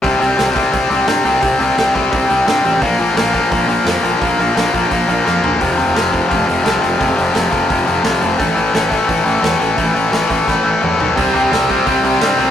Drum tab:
HH |oooooooo|oooooooo|oooooooo|oooooo--|
SD |--o---o-|--o---o-|--o---o-|--o---o-|
T2 |--------|--------|--------|--------|
FT |--------|--------|--------|-------o|
BD |o--oo---|o--oo---|o--oo---|o--oo---|

HH |oooooooo|oooooooo|oooooooo|oooo----|
SD |--o---o-|--o---o-|--o---o-|--o-o---|
T2 |--------|--------|--------|------o-|
FT |--------|--------|--------|-------o|
BD |o--oo---|o--oo---|o--oo---|o--oo---|

HH |oooooooo|
SD |--o---o-|
T2 |--------|
FT |--------|
BD |o--oo---|